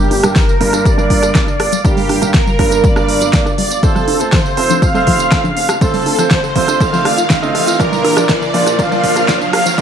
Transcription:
Already playing: G2 G3 A#3 D4 G4 A#4 F5, riser
0.11 G1 A#4, open hi-hat, high conga
0.23 G2 G3 A#3 D4 A#4, cross-stick, closed hi-hat, tambourine
0.36 G1 A#4, kick, snare, closed hi-hat, tambourine
0.48 A#4, tambourine
0.61 G1 G2 G3 A#3 D4 A#4, open hi-hat
0.73 cross-stick, closed hi-hat, tambourine, high conga
0.85 G2 A#4 D5, kick, closed hi-hat, tambourine
0.98 G2 G3 A#3 D4 A#4, tambourine, low conga
1.10 G1, kick, open hi-hat
1.23 A#4, cross-stick, closed hi-hat, tambourine
1.35 G1 G2 G3 A#3 D4 A#4, kick, snare, closed hi-hat, tambourine
1.47 tambourine, high conga
1.60 G1 A#4 D5, cross-stick, open hi-hat
1.72 G3, closed hi-hat, tambourine
1.84 G1 G2 G3 A#3 D4 G4 A#4, kick, closed hi-hat, tambourine
1.97 A#4, open hi-hat, tambourine, low conga
2.09 G1 G3, cross-stick, open hi-hat, high conga
2.22 G2 G3 A#3 D4 A#4, closed hi-hat, tambourine
2.34 G1 A#4, kick, snare, closed hi-hat, tambourine
2.47 G3, tambourine
2.59 G1 G2 G3 A#3 D4 A#4, kick, cross-stick, open hi-hat
2.71 A#4, closed hi-hat, tambourine, high conga
2.84 G1 G3 D5, kick, closed hi-hat, tambourine
2.96 G2 G3 A#3 D4 A#4, cross-stick, tambourine
3.09 G1 A#4, open hi-hat
3.21 G3, closed hi-hat, tambourine
3.33 G1 G2 G3 A#3 D4 A#4, kick, snare, closed hi-hat, tambourine
3.46 A#4, cross-stick, tambourine, high conga
3.58 G1 G3 D5, open hi-hat
3.71 closed hi-hat, tambourine
3.83 F1 A3 C4 F4 A4 C5, kick, closed hi-hat, tambourine
3.95 F3, cross-stick, tambourine, low conga
4.08 F1, open hi-hat, high conga
4.20 A3 C4 F4 A4 C5, closed hi-hat, tambourine
4.32 F1 F3 C5, kick, cross-stick, snare, closed hi-hat, tambourine
4.46 tambourine
4.57 F1 A3 C4 F4 A4 C5, open hi-hat
4.70 F3, closed hi-hat, tambourine, high conga
4.82 F2 F5, kick, cross-stick, closed hi-hat, tambourine
4.95 A3 C4 F4 A4 C5, tambourine, low conga
5.07 F1 F3, kick, open hi-hat
5.19 closed hi-hat, tambourine
5.32 F1 A3 C4 F4 A4, kick, cross-stick, snare, closed hi-hat, tambourine
5.44 F3, tambourine, high conga
5.56 F1 F5, open hi-hat
5.69 A4, cross-stick, closed hi-hat, tambourine
5.81 F1 F3 A3 C4 F4 A4 C5, kick, closed hi-hat, tambourine
5.94 open hi-hat, tambourine, low conga
6.06 F1 A4, open hi-hat, high conga
6.18 F3 A3 C4 F4 C5, cross-stick, closed hi-hat, tambourine
6.31 F1 C5, kick, snare, closed hi-hat, tambourine
6.43 A4, tambourine
6.56 F1 F3 A3 C4 F4 C5, kick, open hi-hat
6.68 cross-stick, closed hi-hat, tambourine, high conga
6.80 F1 A4 F5, kick, closed hi-hat, tambourine
6.93 F3 A3 C4 F4 C5, tambourine
7.05 F1 A3 C4 F4 D5, cross-stick, open hi-hat
7.18 F4, closed hi-hat, tambourine
7.30 F1 F5, kick, snare, closed hi-hat, tambourine
7.42 A3 C4 F4 D#5, tambourine, high conga
7.55 F1 F3 F5, cross-stick, open hi-hat
7.67 F4, closed hi-hat, tambourine
7.79 A#1 A#2 F3 A#3 D4 F4 A#4 D5, kick, cross-stick, closed hi-hat, tambourine
7.92 tambourine, low conga
8.04 A#1 A#4, cross-stick, open hi-hat, high conga
8.17 A#2 F3 A#3 D4 F4 D5, cross-stick, closed hi-hat, tambourine
8.29 A#1 D5, kick, snare, closed hi-hat, tambourine
8.42 A#4, tambourine
8.54 A#1 A#2 F3 A#3 D4 F4 D5, open hi-hat
8.66 cross-stick, closed hi-hat, tambourine, high conga
8.79 A#2 A#4 F5, kick, closed hi-hat, tambourine
8.91 A#2 F3 A#3 D4 F4 D5, tambourine, low conga
9.04 A#1, kick, open hi-hat
9.16 A#4, cross-stick, closed hi-hat, tambourine
9.28 A#1 A#2 F3 A#3 D4 F4 D5, kick, snare, closed hi-hat, tambourine
9.41 tambourine, high conga
9.53 A#1 A#4 F5, cross-stick, open hi-hat
9.66 F3, closed hi-hat, tambourine
9.78 A#1 A#2 A#3 D4 F4 A#4 D5, kick, closed hi-hat

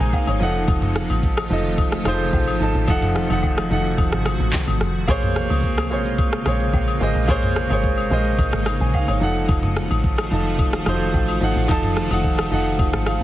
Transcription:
Already playing: C3 C#3 G#3 A#3 D#4 G#4 C5 D#5 A#5
0.00 A#1 G#5, shaker
0.13 F5, kick, low woodblock, shaker
0.27 G#1 C#5, high agogo, shaker
0.40 F1 D#3 F3 A3 D#4 F4 A4 F#5, open hi-hat, shaker
0.55 shaker
0.68 F1, kick, high agogo, shaker
0.82 mid tom, shaker
0.95 cross-stick, open hi-hat, shaker
1.10 A1, high agogo, shaker
1.23 kick, shaker
1.37 cross-stick, high agogo, shaker
1.50 F1 F3 D#4 A4 D#5, open hi-hat, shaker
1.65 shaker
1.78 kick, high agogo, shaker
1.92 cross-stick, shaker
2.05 F1 F3 D#4 G#4 C5, cross-stick, open hi-hat, high agogo, shaker
2.13 A4
2.20 shaker
2.33 A1, kick, low woodblock, shaker
2.47 high agogo, shaker
2.60 G#1 F3 D#4 F#4 A4 A5, open hi-hat, shaker
2.75 A1, shaker
2.87 F1 F3 D#4 A4 F#5, kick, high agogo, shaker
3.02 mid tom, shaker
3.15 cross-stick, open hi-hat, shaker
3.29 F1 F3 D#4 A4 F#5, high agogo, shaker
3.43 kick, low woodblock, shaker
3.57 cross-stick, high agogo
3.70 F1 F3 D#4 A4 F#5, open hi-hat, shaker
3.85 shaker
3.98 F1, kick, high agogo, shaker
4.12 G#1, cross-stick, shaker
4.26 cross-stick, open hi-hat, high agogo, shaker
4.40 A1, shaker
4.53 kick, clap, low woodblock, shaker
4.68 G#1, high agogo, shaker
4.81 F1, cross-stick, open hi-hat, shaker
4.95 shaker
5.07 A#1 C#3 G#3 A#3 F4 G#4 C5 C#5, kick, high agogo, shaker
5.23 mid tom, shaker
5.36 cross-stick, open hi-hat, shaker
5.50 C#2, high agogo, shaker
5.63 kick, shaker
5.77 cross-stick, high agogo, shaker
5.90 A#1 A#3 G#4 C5 C#5, open hi-hat, shaker
6.05 shaker
6.18 kick, high agogo, shaker
6.33 cross-stick, shaker
6.45 A#1 A#3 G#4 C5 C#5, cross-stick, open hi-hat, high agogo, shaker
6.60 shaker
6.73 A#1, kick, low woodblock, shaker
6.88 high agogo, shaker
7.00 G#1 A#3 G#4 C5 D#5, open hi-hat, shaker
7.15 A#1, shaker
7.28 A#1 A#3 D#4 G#4 C5 C#5, kick, high agogo, shaker
7.43 mid tom, shaker
7.56 cross-stick, open hi-hat, shaker
7.69 G#1 A#3 G#4 C5 C#5, high agogo, shaker
7.84 kick, shaker
7.98 high agogo, shaker
8.10 A#1 A#3 G#4 C5 D#5, open hi-hat, shaker
8.25 shaker
8.38 A#1, kick, high agogo, shaker
8.53 G#1, cross-stick, shaker
8.66 cross-stick, open hi-hat, high agogo, shaker
8.80 A#1 G#5, shaker
8.94 F5, kick, low woodblock, shaker
9.08 G#1 C#5, high agogo, shaker
9.20 F1 D#3 F3 A3 D#4 F4 F#4 A4 F#5, open hi-hat, shaker
9.35 shaker
9.48 F1, kick, high agogo, shaker
9.63 mid tom, shaker
9.76 cross-stick, open hi-hat, shaker
9.91 A1, high agogo, shaker
10.04 kick, shaker
10.18 cross-stick, high agogo, shaker
10.31 F1 F3 D#4 A4 A5, open hi-hat, shaker
10.46 shaker
10.59 kick, high agogo, shaker
10.73 cross-stick, shaker
10.86 F1 F3 D#4 F#4 C5, cross-stick, open hi-hat, high agogo, shaker
10.94 A4
11.01 shaker
11.14 A1, kick, low woodblock, shaker
11.28 high agogo, shaker
11.41 G#1 F3 D#4 A4 F#5, open hi-hat, shaker
11.56 A1, shaker
11.68 F1 F3 D#4 A4 A5, kick, high agogo, shaker
11.83 mid tom, shaker
11.96 cross-stick, open hi-hat, shaker
12.10 F1 F3 D#4 A4 F#5, high agogo, shaker
12.24 kick, shaker
12.38 cross-stick, high agogo
12.51 F1 F3 D#4 A4 F#5, open hi-hat, shaker
12.66 shaker
12.79 F1, kick, high agogo, shaker
12.93 G#1, cross-stick, shaker
13.06 F5, cross-stick, open hi-hat, high agogo, shaker

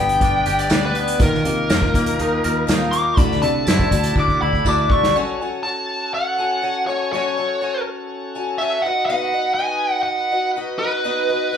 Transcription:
Already playing: G1 G2 B3 D4 G4 B4 G5
0.00 G3 B3 D4
0.09 closed hi-hat
0.19 G1 G3 D4 G4 D5, kick, closed hi-hat
0.23 B3 D4 G4
0.46 G1 B3 D4 G4, closed hi-hat
0.51 G3
0.59 D5, closed hi-hat
0.69 D2 G2 D4 G4 B4 D5, snare, closed hi-hat, tambourine
0.73 D3 G3 B3 D4 G4
0.85 B4
0.95 B3, closed hi-hat
1.08 closed hi-hat
1.19 D#2 D#3 F3 A#3 D#4 F4 A#4, kick, closed hi-hat
1.34 snare
1.45 C3 A#3 F4 A#4, closed hi-hat
1.69 F2 D#3 F3 A#3 D#4 F4 A#4, snare, closed hi-hat, tambourine
1.82 kick
1.94 D#2 A#3 F4 A#4, kick, closed hi-hat
2.06 closed hi-hat
2.18 D#2 F3 A#3 D#4 F4 A#4, closed hi-hat
2.44 D#2 A#3 F4 A#4, closed hi-hat
2.67 D#2 D#3 F3 A#3 D#4 F4 A#4, snare, closed hi-hat, tambourine
2.91 A#3 D6, closed hi-hat
3.16 D2 D3 E3 A3 D4 E4 F#4 A4 D5 B5, kick, closed hi-hat
3.31 snare
3.42 C3 A3 D4 F#4 D5 A5, closed hi-hat
3.67 F#2 D3 E3 A3 D4 E4 F#4 C5 D5, snare, closed hi-hat, tambourine
3.79 kick
3.91 D2 A3 D4 F#4 D5, kick, closed hi-hat
4.03 closed hi-hat
4.16 D2 A3 D4 E4 F#4 D5, kick
4.20 D6
4.28 kick
4.42 D2 A3 D4 E4 F#4 D5 B5
4.53 kick
4.65 D2 D3 E3 A3 D4 E4 F#4 D5 D6, kick, tambourine
4.69 F#4 D5
4.90 A3 C#6, kick
5.04 snare
5.14 F#3 C#4 F#4 A4 C#5 G#5
5.41 F#4 A4 C#5 G#5
5.63 F#4 A4 C#5 A5
6.14 F#5
6.38 F#4 A4 C#5 G#5
6.62 F#4 A4 C#5 G#5
6.87 F#4 A4 C#5 G#5
7.13 F#3 C#4 F#4 A4 C#5 G#5
7.37 F#4 A4 C#5 G#5
7.61 F#4 A4 C#5 G#5
8.35 F#4 A4 C#5 G#5
8.58 F#4 A4 C#5 E5 G#5
8.82 D#4 F#4 B4 D#5 F#5
8.86 F#4 B4
9.06 B3 D#4 F#5
9.10 F#4 B4 D#5
9.34 F#4 B4 D#5
9.54 D#4 G#5
9.59 F#4 B4 D#5
10.03 F#5
10.31 F#4 B4 D#5
10.56 D#4 F#4 B4 D#5
10.79 B4 D#5
10.83 F#4
11.04 B3 D#4 F#4 B4 D#5
11.29 F#4 B4 D#5
11.52 D#4 F#4 B4

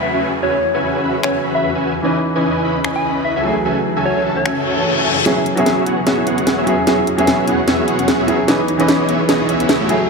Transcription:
Already playing: E2 E3 F#3 C#4 E4 F#4 G#4 B4 E5 B5, downlifter
0.03 E5
0.14 C#4 F#4 B4 E5 G#5
0.43 C#4 F#4 B4 C#5 E5 G#5
0.74 C#4 F#4 B4 E5 G#5
1.03 C#4 F#4 B4 E5 B5
1.23 C#4 F#4 B4 C#5 E5 G#5, finger snap
1.44 C#4 F#4 B4 E5 B5
1.55 E5
1.64 E5
1.75 C#4 F#4 B4 E5 G#5
2.02 C#2 C#3 E3 C#4 D#4 E4 B4 D#5 G#5
2.35 C#4 E4 B4 D#5 G#5
2.64 C#4 E4 B4 D#5 B5
2.84 C#4 E4 B4 D#5 G#5, finger snap
2.96 G#5
3.05 C#4 E4 B4 D#5 B5
3.25 E5
3.36 C#4 F#4 A4 E5 G#5
3.43 F#2 C#3 F#3 A3 E4 G#4
3.47 G#4
3.65 C#4 F#4 A4 E5 G#5
3.96 C#4 F#4 A4 E5 G#5
4.05 C#5
4.17 C#5
4.25 C#4 F#4 A4 E5 A5
4.37 C#5
4.46 C#4 F#4 A4 E5 G#5, finger snap, reverse cymbal
4.66 C#4 F#4 A4 E5 A5
4.97 C#4 F#4 A4 E5 G#5
5.25 E2 B2 F#3 B3 C#4 E4 F#4 G#4 C#5 E5, snare, closed hi-hat, riser
5.37 E4
5.46 E4, closed hi-hat
5.55 F#3 B3 C#4 E4 F#4 G#4 C#5 E5, closed hi-hat
5.66 G#4, snare, closed hi-hat
5.77 F#4
5.86 B3 E4 F#4 G#4 C#5 F#5, closed hi-hat
5.98 F#4
6.07 B3 F#4 G#4 C#5 E5, snare, closed hi-hat
6.18 E4
6.27 B3 E4 F#4 G#4 C#5 F#5, closed hi-hat
6.38 C#4, closed hi-hat
6.47 G#4, snare, closed hi-hat
6.58 B3 F#4 G#4 C#5 E5
6.66 F#3 C#4 E4 G#4, closed hi-hat
6.78 F#4
6.86 F#3 B3 C#4 E4 F#4 G#4 C#5 E5, snare, closed hi-hat
6.98 E4
7.07 E4, closed hi-hat
7.17 F#3 B3 C#4 E4 F#4 G#4 C#5 E5, closed hi-hat
7.27 G#4, snare, closed hi-hat
7.39 F#4
7.48 B3 E4 F#4 G#4 C#5 F#5, closed hi-hat
7.59 F#4
7.68 B3 F#4 G#4 C#5 E5, snare, closed hi-hat
7.79 E4
7.88 B3 E4 F#4 G#4 C#5 F#5, closed hi-hat
7.99 C#4, closed hi-hat
8.08 G#4, snare, closed hi-hat
8.19 B3 F#4 G#4 C#5 E5
8.27 F#3 C#4 E4 G#4, closed hi-hat
8.39 F#4
8.47 C#2 C#3 E3 B3 C#4 D#4 E4 G#4 B4 C#5 D#5, snare, closed hi-hat
8.59 D#4
8.68 D#4, closed hi-hat
8.77 E3 B3 C#4 D#4 E4 G#4 B4 C#5 D#5, closed hi-hat
8.88 G#4, snare, closed hi-hat
9.00 E4
9.09 B3 D#4 E4 G#4 C#5 E5, closed hi-hat
9.20 E4
9.29 B3 E4 G#4 C#5 D#5, snare, closed hi-hat
9.40 D#4
9.49 B3 D#4 E4 G#4 C#5 E5, closed hi-hat
9.60 C#4, closed hi-hat
9.69 G#4, snare, closed hi-hat
9.80 A3 E4 F#4 G#4 C#5 E5
9.88 F#3 A3 E4 G#4, closed hi-hat
10.00 F#4

